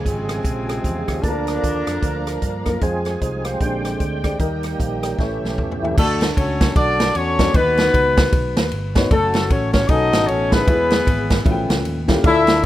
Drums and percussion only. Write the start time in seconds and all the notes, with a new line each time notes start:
0.06 kick, closed hi-hat
0.29 cross-stick, closed hi-hat
0.45 kick, closed hi-hat
0.69 cross-stick, closed hi-hat
0.84 kick, closed hi-hat
1.08 kick, cross-stick, closed hi-hat
1.23 kick, closed hi-hat
1.47 cross-stick, closed hi-hat
1.64 kick, closed hi-hat
1.87 cross-stick, closed hi-hat
2.02 kick, closed hi-hat
2.27 cross-stick, closed hi-hat
2.42 kick, closed hi-hat
2.66 kick, cross-stick, closed hi-hat
2.81 kick, closed hi-hat
3.05 cross-stick, closed hi-hat
3.22 kick, closed hi-hat
3.45 cross-stick, closed hi-hat
3.60 kick, closed hi-hat
3.85 cross-stick, closed hi-hat
4.00 kick, closed hi-hat
4.24 kick, cross-stick, closed hi-hat
4.39 kick, closed hi-hat
4.63 cross-stick, closed hi-hat
4.80 kick, closed hi-hat
5.03 cross-stick, closed hi-hat
5.19 kick, snare
5.45 snare
5.58 kick, mid tom
5.72 floor tom
5.85 floor tom
5.98 kick, crash
6.21 snare, ride
6.37 kick, ride
6.61 kick, snare, ride
6.76 kick, ride
7.00 snare, ride
7.15 ride
7.39 kick, snare, ride
7.54 kick, ride
7.77 snare, ride
7.94 kick, ride
8.17 kick, snare, ride
8.32 kick, ride
8.57 snare, ride
8.71 ride
8.95 kick, snare, ride
9.11 kick, ride
9.34 snare, ride
9.50 kick, ride
9.74 kick, snare, ride
9.89 kick, ride
10.13 snare, ride
10.28 ride
10.52 kick, snare, ride
10.68 kick, ride
10.90 snare, ride
11.07 kick, ride
11.30 kick, snare, ride
11.46 kick, ride
11.70 snare, ride
11.85 ride
12.08 kick, snare, ride
12.24 kick, ride
12.47 snare, ride